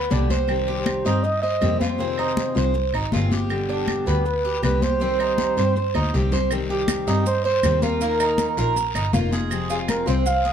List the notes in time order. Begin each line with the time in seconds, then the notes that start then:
Already playing: B3
0.10 C2 B2 D3 G3 B3 D4 G4, high conga, short guiro
0.29 G3 B3 G4 C5, high conga, short guiro
0.48 C3 D#3 G3 C4 G4, high conga, long guiro, claves
0.68 G4 C5, high conga
0.86 high conga, short guiro, claves
1.05 G2 D#3 G3 C4 D#4 G4, high conga, short guiro
1.23 D#5, muted steel-string acoustic guitar stroke, high conga, long guiro
1.42 C5 D#5, high conga
1.61 F2 C3 D#3 G3 C4 G4, high conga, short guiro, claves
1.79 G3 C4 F4 G4 C5, high conga, short guiro
1.98 C3 D#3 G#3 C4 F4, high conga, long guiro
2.18 D#4, high conga, claves
2.37 high conga, short guiro
2.55 C2 D#3 G#3 C4 F4 C5, high conga, short guiro
2.74 muted steel-string acoustic guitar stroke, high conga, long guiro
2.93 G#1 D#4, high conga, claves
3.12 G1 C3 D#3 G#3 C4 F4, high conga, short guiro
3.30 G#3 C4 F4 G4, high conga, short guiro
3.50 B2 D3 G3 B3 G4, high conga, long guiro, claves
3.69 D4 G4, high conga
3.88 high conga, short guiro, claves
4.06 D2 D3 G3 B3 G4, high conga, short guiro
4.25 B4, muted steel-string acoustic guitar stroke, high conga, long guiro
4.44 G4, high conga
4.63 C2 B2 D3 G3 B3 G4 B4, high conga, short guiro, claves
4.82 B3 G4 C5, high conga, short guiro
5.00 C3 D#3 G3 C4 G4, high conga, long guiro
5.20 D#4, high conga, claves
5.38 high conga, short guiro
5.57 G2 D#3 G3 C4 G4 C5, high conga, short guiro
5.76 muted steel-string acoustic guitar stroke, high conga, long guiro
5.95 D2 D#4, high conga, claves
6.13 C2 C3 D#3 G3 C4 G4, short guiro
6.32 G3 C4 G4 C5, low conga, short guiro
6.51 C3 D#3 G3 C4 G4, high conga, long guiro, claves, maracas
6.70 G4, high conga
6.88 high conga, short guiro, claves, maracas
7.07 G2 D#3 G3 C4 D#4 G4, high conga, short guiro, maracas
7.26 C5, muted steel-string acoustic guitar stroke, high conga, long guiro, maracas
7.45 C5, high conga
7.63 D#2 C3 D#3 G3 C4 G4, high conga, short guiro, claves, maracas
7.82 G3 C4 F4 G4 A#4, high conga, short guiro, maracas
8.01 D#3 A#3 D#4 F4, high conga, long guiro, maracas
8.20 D#4, high conga, claves, maracas
8.38 high conga, short guiro, maracas
8.57 A#1 A#3 D#4 F4 A#4, high conga, short guiro, maracas
8.76 muted steel-string acoustic guitar stroke, high conga, long guiro, maracas
8.95 G1 D#4, high conga, claves, maracas
9.13 F1 D#3 A#3 D#4 F4, high conga, short guiro, maracas
9.31 A#3 D#4 F4 G#4, high conga, short guiro, maracas
9.50 C3 F3 G#3 C4 F4, high conga, long guiro, claves, maracas
9.70 F4 G#4, high conga, maracas
9.88 A#4, high conga, short guiro, claves, maracas
10.06 C2 F3 G#3 C4 F4 C5, high conga, short guiro, maracas
10.25 F5, muted steel-string acoustic guitar stroke, high conga, long guiro, maracas
10.45 G#4, high conga